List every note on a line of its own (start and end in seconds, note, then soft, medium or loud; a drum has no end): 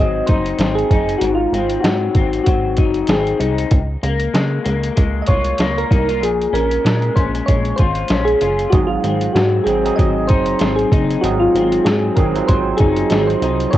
0.00 0.22 G#1 medium
0.00 1.22 G#2 medium
0.00 1.84 F#3 medium
0.00 0.58 C4 medium
0.00 0.24 D#5 loud
0.26 0.54 F#1 medium
0.26 0.91 D#4 medium
0.26 0.72 C5 medium
0.26 kick medium
0.26 closed hi-hat medium
0.46 closed hi-hat soft
0.58 0.84 G#1 loud
0.58 1.53 C4 medium
0.58 snare medium
0.58 closed hi-hat medium
0.75 1.18 G#4 medium
0.75 closed hi-hat soft
0.91 1.16 F#1 medium
0.91 2.77 D#4 medium
0.91 kick medium
0.91 closed hi-hat medium
1.09 closed hi-hat soft
1.18 1.47 G#1 medium
1.18 1.38 F#4 medium
1.18 closed hi-hat medium
1.24 3.73 G#2 medium
1.35 1.84 F4 medium
1.52 1.78 G#1 medium
1.52 2.15 C4 medium
1.52 closed hi-hat medium
1.70 closed hi-hat soft
1.80 2.09 G#2 medium
1.80 2.41 F#4 medium
1.80 closed hi-hat medium
1.85 2.46 F#3 medium
1.85 snare loud
2.15 2.40 G#1 medium
2.15 3.08 C4 medium
2.15 kick medium
2.15 closed hi-hat medium
2.33 closed hi-hat soft
2.44 2.80 G#1 medium
2.44 3.79 F#3 medium
2.44 3.04 F#4 medium
2.44 kick medium
2.44 closed hi-hat medium
2.77 3.03 F#1 medium
2.77 3.39 D#4 medium
2.77 kick medium
2.77 closed hi-hat medium
2.94 closed hi-hat soft
3.07 3.34 G#1 loud
3.07 3.79 C4 medium
3.07 3.54 G#4 medium
3.07 snare medium
3.07 closed hi-hat medium
3.27 closed hi-hat soft
3.40 3.65 C2 medium
3.40 3.79 D#4 medium
3.40 closed hi-hat medium
3.58 closed hi-hat medium
3.71 3.97 C#2 loud
3.71 kick loud
3.71 closed hi-hat medium
4.03 4.28 C#2 loud
4.03 4.64 A#3 medium
4.03 closed hi-hat medium
4.20 closed hi-hat soft
4.33 4.59 C#3 loud
4.33 4.96 G#3 medium
4.33 snare medium
4.33 closed hi-hat medium
4.64 4.91 C#2 medium
4.64 5.60 A#3 medium
4.64 closed hi-hat medium
4.83 closed hi-hat medium
4.96 5.22 C#2 loud
4.96 6.84 G#3 medium
4.96 kick medium
4.96 closed hi-hat medium
5.22 5.29 D#5 medium
5.26 5.53 C2 medium
5.26 5.90 F4 medium
5.26 5.78 C#5 medium
5.26 kick medium
5.26 closed hi-hat medium
5.44 closed hi-hat soft
5.58 5.84 C#2 loud
5.58 6.52 A#3 medium
5.58 snare medium
5.58 closed hi-hat medium
5.78 6.24 A#4 medium
5.78 closed hi-hat soft
5.91 6.23 C2 medium
5.91 6.08 D#4 medium
5.91 kick loud
5.91 closed hi-hat medium
6.08 6.29 F4 medium
6.08 closed hi-hat soft
6.21 6.47 A#1 loud
6.21 8.72 A#2 medium
6.21 6.55 G#4 medium
6.21 closed hi-hat medium
6.41 closed hi-hat soft
6.52 6.78 A#1 loud
6.52 7.14 C#4 medium
6.52 7.18 A#4 medium
6.52 closed hi-hat medium
6.71 closed hi-hat soft
6.84 7.10 A#2 loud
6.84 7.47 G#3 medium
6.84 snare loud
6.84 closed hi-hat medium
7.02 closed hi-hat soft
7.16 7.41 A#1 medium
7.16 8.09 C#4 medium
7.16 7.29 C5 medium
7.16 kick medium
7.16 closed hi-hat medium
7.35 closed hi-hat medium
7.46 7.73 A#1 medium
7.46 9.35 G#3 medium
7.46 7.76 C#5 loud
7.46 kick medium
7.46 closed hi-hat medium
7.65 closed hi-hat soft
7.76 8.04 G#1 medium
7.76 8.41 F4 medium
7.76 8.22 C5 medium
7.76 kick medium
7.76 closed hi-hat medium
7.95 closed hi-hat soft
8.08 8.35 A#1 loud
8.08 8.80 C#4 medium
8.08 snare medium
8.08 closed hi-hat medium
8.25 8.73 G#4 medium
8.25 closed hi-hat soft
8.41 8.67 F#1 medium
8.41 8.80 F4 medium
8.41 closed hi-hat medium
8.59 closed hi-hat soft
8.70 8.98 G#1 loud
8.70 11.23 G#2 medium
8.70 9.62 F#3 medium
8.70 9.62 C4 medium
8.70 9.63 D#4 medium
8.70 8.78 F#4 medium
8.70 kick loud
8.70 closed hi-hat medium
8.75 9.63 G#4 medium
8.87 9.35 F4 medium
9.04 9.29 G#1 medium
9.04 9.65 C4 soft
9.04 closed hi-hat medium
9.21 closed hi-hat soft
9.33 9.60 G#2 loud
9.33 9.96 F#3 medium
9.33 9.63 F#4 medium
9.33 snare medium
9.33 closed hi-hat medium
9.64 9.91 G#1 medium
9.64 9.82 F#3 medium
9.64 10.59 C4 medium
9.64 9.83 C4 medium
9.64 9.94 G#4 medium
9.64 closed hi-hat medium
9.68 9.84 D#4 medium
9.68 9.84 G#4 medium
9.84 11.01 F#3 medium
9.84 11.02 C4 medium
9.84 11.02 D#4 medium
9.84 11.03 G#4 medium
9.84 closed hi-hat soft
9.96 10.31 G#1 medium
9.96 11.85 F#3 medium
9.96 10.29 D#5 loud
9.96 kick medium
9.96 closed hi-hat medium
10.27 10.55 F#1 medium
10.27 10.91 D#4 medium
10.27 10.78 C5 medium
10.27 kick medium
10.27 closed hi-hat medium
10.46 closed hi-hat soft
10.59 10.85 G#1 loud
10.59 11.54 C4 medium
10.59 snare medium
10.59 closed hi-hat medium
10.76 11.24 G#4 medium
10.76 closed hi-hat soft
10.92 11.17 F#1 medium
10.92 12.79 D#4 medium
10.92 kick medium
10.92 closed hi-hat medium
11.10 closed hi-hat soft
11.21 11.48 G#1 loud
11.21 13.74 G#2 medium
11.21 12.12 F#3 medium
11.21 12.12 C4 medium
11.21 12.13 D#4 medium
11.21 11.40 F#4 medium
11.21 closed hi-hat medium
11.25 12.13 G#4 medium
11.39 11.87 F4 loud
11.55 11.79 G#1 medium
11.55 12.17 C4 medium
11.55 closed hi-hat medium
11.72 closed hi-hat soft
11.84 12.10 G#2 medium
11.84 12.48 F#3 medium
11.84 12.17 G#4 medium
11.84 snare loud
11.84 closed hi-hat medium
12.16 12.42 G#1 medium
12.16 12.33 F#3 medium
12.16 12.33 C4 medium
12.16 13.10 C4 medium
12.16 12.34 D#4 medium
12.16 12.34 G#4 medium
12.16 12.49 A#4 medium
12.16 kick medium
12.16 closed hi-hat medium
12.34 13.52 F#3 medium
12.34 13.52 C4 medium
12.34 13.53 D#4 medium
12.34 13.53 F4 medium
12.34 closed hi-hat medium
12.47 12.73 G#1 loud
12.47 13.78 F#3 medium
12.47 12.80 C5 loud
12.47 kick medium
12.47 closed hi-hat medium
12.77 13.05 F#1 medium
12.77 13.42 D#4 medium
12.77 13.28 G#4 medium
12.77 kick medium
12.77 closed hi-hat medium
12.96 closed hi-hat soft
13.10 13.36 G#1 loud
13.10 13.78 C4 medium
13.10 snare medium
13.10 closed hi-hat medium
13.27 13.70 C5 medium
13.27 closed hi-hat soft
13.42 13.67 C2 medium
13.42 13.78 D#4 medium
13.42 closed hi-hat medium
13.60 closed hi-hat soft
13.71 13.78 C#2 loud
13.71 13.78 F3 medium
13.71 13.78 A#3 medium
13.71 13.78 C#4 medium
13.71 13.78 C#5 medium
13.71 kick loud
13.71 closed hi-hat medium